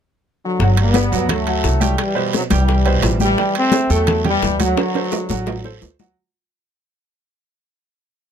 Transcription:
0.44 trombone section D3 F#3
0.60 upright bass G1, upright piano F#3 F#4 F#5, high bongo, high conga, long guiro
0.77 trombone section G3 B3, high conga, high timbale
0.94 upright piano B3 B4 D5, high bongo, high conga, high timbale, short guiro
1.12 upright bass D2, upright piano F#3 F#4 F#5, short guiro
1.29 trombone section F#3 A3, high bongo, high conga, low conga, high timbale, long guiro
1.46 upright piano F#3 F#4 F#5, high conga, high timbale
1.64 upright bass C2, high bongo, low bongo, high conga, short guiro
1.80 upright piano G3 G4 G5, high conga, high timbale, short guiro
1.98 trombone section E3 G3, high bongo, high conga, high timbale, long guiro
2.15 upright piano B2 B4 C5, high bongo, high conga
2.33 trombone section C3 F#3, high bongo, high conga, high timbale, short guiro
2.50 upright bass C2, trombone section E3 G3, upright piano G3 G4 G5, high bongo, high conga, high timbale, short guiro
2.68 high bongo, high conga, long guiro
2.85 upright piano B2 B4 C5, high conga, high timbale
3.02 upright bass A1, high bongo, low bongo, high conga, high timbale, low timbale, short guiro
3.20 trombone section E3 G3, upright piano G3 G4 G5, high bongo, high conga, short guiro
3.38 upright piano G3 G4 G5, high bongo, high conga, long guiro
3.55 trombone section A3 C4, high conga, high timbale
3.72 upright piano C4 C5 E5, high bongo, high conga, high timbale, short guiro
3.90 upright bass E2, trombone section F#3 A3, upright piano A3 A4 G5, short guiro
4.07 high bongo, high conga, low conga, high timbale, long guiro
4.25 trombone section E3, upright piano G3 G4 G5, high conga, low conga, high timbale
4.29 trombone section G3
4.42 upright bass D2, high bongo, low bongo, high conga, short guiro
4.60 trombone section D3, upright piano F#3 F#4 F#5, high conga, high timbale, short guiro
4.64 trombone section F#3
4.77 high bongo, high conga, high timbale, long guiro
4.95 upright piano A3 A4 C5, high bongo, high conga, high timbale
5.12 high bongo, high conga, low timbale, short guiro
5.29 upright bass A1, upright piano F#3 F#4 F#5, high bongo, high conga, short guiro
5.46 high bongo, high conga, low timbale, long guiro
5.64 upright piano A3 A4 C5, low bongo, high conga
5.82 upright bass D2, low bongo, high conga, low timbale, short guiro
5.99 upright piano F#3 F#4 F#5, low bongo, high conga, low timbale, short guiro

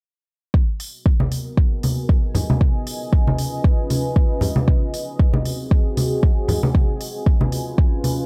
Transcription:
0.54 ambient pad B3 F#4 A#4 D#5 G#5, kick
0.80 open hi-hat
1.06 kick
1.20 high conga
1.32 open hi-hat
1.57 kick
1.83 open hi-hat, high conga
2.09 kick
2.35 ambient pad C#4 F4 B4, open hi-hat, low conga
2.50 high conga
2.61 kick
2.87 open hi-hat
3.13 kick
3.27 high conga
3.38 open hi-hat
3.64 kick
3.90 open hi-hat, high conga
4.16 kick
4.41 open hi-hat, low conga
4.56 high conga
4.68 ambient pad C4 F#4 G#4 G#5, kick
4.94 open hi-hat
5.19 kick
5.34 high conga
5.45 open hi-hat
5.71 kick
5.97 open hi-hat, high conga
6.23 kick
6.48 open hi-hat, low conga
6.63 high conga
6.75 ambient pad C#4 F4 B4, kick
7.01 open hi-hat
7.26 kick
7.41 high conga
7.52 open hi-hat
7.78 kick
8.04 open hi-hat, high conga

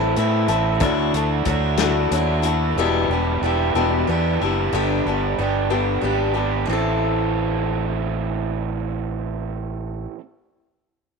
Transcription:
Already playing: fingered electric bass A1, steel-string acoustic guitar A2 E3 C4 E4 A4, overdriven electric guitar E3 A3
0.16 fingered electric bass A2, steel-string acoustic guitar E3 C4 E4 A4, overdriven electric guitar A3, closed hi-hat
0.48 fingered electric bass A1, steel-string acoustic guitar C4 E4 A4, closed hi-hat
0.52 overdriven electric guitar A3
0.80 fingered electric bass D2, steel-string acoustic guitar D3 F#3 A3 D4 E4, kick, closed hi-hat
0.85 overdriven electric guitar F#4
1.13 fingered electric bass D2, steel-string acoustic guitar A3 D4 E4, overdriven electric guitar F#4, closed hi-hat
1.45 fingered electric bass D2, overdriven electric guitar D3 F#4, steel-string acoustic guitar F#3 A3 D4, kick, closed hi-hat
1.50 steel-string acoustic guitar E4
1.77 steel-string acoustic guitar F#3 A3 D4 E4, overdriven electric guitar F#4, snare, closed hi-hat
1.82 steel-string acoustic guitar D3
2.11 fingered electric bass D#2, overdriven electric guitar D3, steel-string acoustic guitar F#3 A3 D4 E4, closed hi-hat
2.17 overdriven electric guitar F#4
2.42 steel-string acoustic guitar A3 D4 E4, overdriven electric guitar F#4, closed hi-hat
2.76 fingered electric bass E1, steel-string acoustic guitar E2 B2 G3 B3 D4 E4, overdriven electric guitar E3 G4
3.08 fingered electric bass E1, overdriven electric guitar E3 G4, steel-string acoustic guitar E4
3.12 steel-string acoustic guitar G3 B3 D4
3.41 fingered electric bass E1, overdriven electric guitar E3 G4, steel-string acoustic guitar G3 B3 D4
3.46 steel-string acoustic guitar E4
3.74 fingered electric bass E1, steel-string acoustic guitar E2 B2 G3 B3 D4 E4, overdriven electric guitar E3 G4
4.07 fingered electric bass E2, overdriven electric guitar E3 G4, steel-string acoustic guitar G3 B3 D4 E4
4.40 fingered electric bass F#1, overdriven electric guitar E3 G4, steel-string acoustic guitar B3 D4 E4
4.45 steel-string acoustic guitar G3
4.72 fingered electric bass G1, steel-string acoustic guitar G2 D3 G3 B3 D4 G4
5.05 fingered electric bass G1, steel-string acoustic guitar B3 D4 G4
5.10 steel-string acoustic guitar G3
5.38 fingered electric bass G1, steel-string acoustic guitar G3 B3 D4 G4
5.70 steel-string acoustic guitar G2 D3 G3 B3 D4 G4
6.01 fingered electric bass G#1, steel-string acoustic guitar G3 B3 D4 G4
6.34 steel-string acoustic guitar G3 B3 D4 G4
6.66 fingered electric bass A1, steel-string acoustic guitar A2 E3 C4
6.71 steel-string acoustic guitar E4 A4

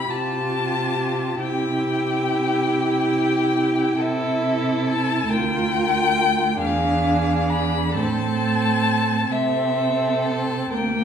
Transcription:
Already playing: violin B5
0.10 cello C3, viola F4, violin G4 A5
1.41 cello C3, viola E4, violin G4 G5
4.00 cello C3, viola E4, violin A4 E5
4.87 violin A5
5.29 cello D2, viola F4, violin A#4 G5
6.60 cello E2, viola D4, violin G#4 F5
7.50 violin B5
7.94 cello A2, viola C4, violin A4 A5
9.31 cello C3, viola C4, violin A4 E5
10.25 violin A5
10.74 cello D2, viola A#3, violin A#4 G5

